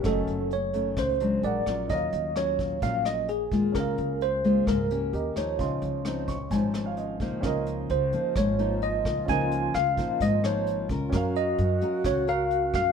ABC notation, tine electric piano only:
X:1
M:4/4
L:1/8
Q:1/4=130
K:Db
V:1 name="Tine electric piano"
=A2 d2 c2 =d2 | e2 d2 f e A2 | B2 c2 B3 d- | d6 z2 |
z2 c2 d2 e2 | a2 f2 e d2 z | z e3 d f2 f |]